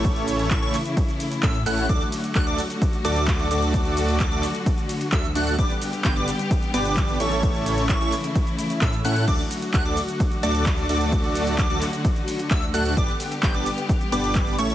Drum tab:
CC |----------------|----------------|----------------|----------------|
RD |x-x-x-x-x-x-x-x-|x-x-x-x-x-x-x-x-|x-x-x-x-x-x-x-x-|x-x-x-x-x-x-x-x-|
HH |xxoxxxoxxxoxxxox|xxoxxxoxxxoxxxox|xxoxxxoxxxoxxxox|xxoxxxoxxxoxxxox|
SH |xxxxxxxxxxxxxxxx|xxxxxxxxxxxxxxxx|xxxxxxxxxxxxxxxx|xxxxxxxxxxxxxxxx|
CP |----x-x-----x---|----x-------x---|----x-x-----x---|----x-------x---|
BD |o---o---o---o---|o---o---o---o---|o---o---o---o---|o---o---o---o---|

CC |----------------|x---------------|----------------|----------------|
RD |x-x-x-x-x-x-x-x-|x-x-x-x-x-x-x-x-|x-x-x-x-x-x-x-x-|x-x-x-x-x-x-x-x-|
HH |xxoxxxoxxxoxxxox|xxoxxxoxxxoxxxox|xxoxxxoxxxoxxxox|xxoxxxoxxxoxxxox|
SH |xxxxxxxxxxxxxxxx|xxxxxxxxxxxxxxxx|xxxxxxxxxxxxxxxx|xxxxxxxxxxxxxxxx|
CP |----x-x-----x---|----x-------x---|----x-x-----x---|----x-------x---|
BD |o---o---o---o---|o---o---o---o---|o---o---o---o---|o---o---o---o---|